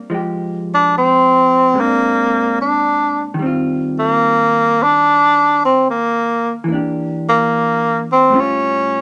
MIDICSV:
0, 0, Header, 1, 3, 480
1, 0, Start_track
1, 0, Tempo, 821918
1, 60, Time_signature, 4, 2, 24, 8
1, 5263, End_track
2, 0, Start_track
2, 0, Title_t, "Hollow-body jazz guitar"
2, 0, Program_c, 0, 26
2, 0, Note_on_c, 0, 60, 31
2, 0, Note_on_c, 0, 62, 34
2, 57, Note_on_c, 0, 53, 34
2, 60, Note_off_c, 0, 60, 0
2, 64, Note_off_c, 0, 62, 0
2, 66, Note_on_c, 0, 56, 32
2, 85, Note_on_c, 0, 67, 35
2, 1016, Note_on_c, 0, 46, 35
2, 1017, Note_off_c, 0, 56, 0
2, 1019, Note_off_c, 0, 53, 0
2, 1024, Note_on_c, 0, 56, 35
2, 1031, Note_on_c, 0, 60, 38
2, 1033, Note_off_c, 0, 67, 0
2, 1041, Note_on_c, 0, 62, 39
2, 1952, Note_on_c, 0, 51, 41
2, 1977, Note_off_c, 0, 56, 0
2, 1978, Note_off_c, 0, 46, 0
2, 1980, Note_on_c, 0, 55, 38
2, 1986, Note_off_c, 0, 60, 0
2, 1991, Note_off_c, 0, 62, 0
2, 2000, Note_on_c, 0, 60, 41
2, 2020, Note_on_c, 0, 65, 42
2, 3876, Note_off_c, 0, 51, 0
2, 3879, Note_on_c, 0, 52, 35
2, 3899, Note_off_c, 0, 55, 0
2, 3903, Note_on_c, 0, 58, 34
2, 3909, Note_off_c, 0, 60, 0
2, 3919, Note_off_c, 0, 65, 0
2, 3926, Note_on_c, 0, 62, 36
2, 3942, Note_on_c, 0, 67, 37
2, 4848, Note_on_c, 0, 45, 46
2, 4849, Note_off_c, 0, 52, 0
2, 4860, Note_off_c, 0, 58, 0
2, 4863, Note_on_c, 0, 55, 41
2, 4868, Note_off_c, 0, 62, 0
2, 4870, Note_on_c, 0, 61, 46
2, 4876, Note_off_c, 0, 67, 0
2, 4878, Note_on_c, 0, 65, 50
2, 5263, Note_off_c, 0, 45, 0
2, 5263, Note_off_c, 0, 55, 0
2, 5263, Note_off_c, 0, 61, 0
2, 5263, Note_off_c, 0, 65, 0
2, 5263, End_track
3, 0, Start_track
3, 0, Title_t, "Tenor saxophone"
3, 0, Program_c, 1, 66
3, 436, Note_on_c, 1, 62, 71
3, 554, Note_off_c, 1, 62, 0
3, 572, Note_on_c, 1, 60, 69
3, 1052, Note_on_c, 1, 58, 62
3, 1061, Note_off_c, 1, 60, 0
3, 1516, Note_off_c, 1, 58, 0
3, 1525, Note_on_c, 1, 62, 60
3, 1894, Note_off_c, 1, 62, 0
3, 2330, Note_on_c, 1, 58, 72
3, 2820, Note_on_c, 1, 62, 83
3, 2828, Note_off_c, 1, 58, 0
3, 3285, Note_off_c, 1, 62, 0
3, 3300, Note_on_c, 1, 60, 62
3, 3425, Note_off_c, 1, 60, 0
3, 3445, Note_on_c, 1, 58, 59
3, 3814, Note_off_c, 1, 58, 0
3, 4258, Note_on_c, 1, 58, 65
3, 4700, Note_off_c, 1, 58, 0
3, 4742, Note_on_c, 1, 60, 67
3, 4905, Note_on_c, 1, 61, 71
3, 4914, Note_off_c, 1, 60, 0
3, 5263, Note_off_c, 1, 61, 0
3, 5263, End_track
0, 0, End_of_file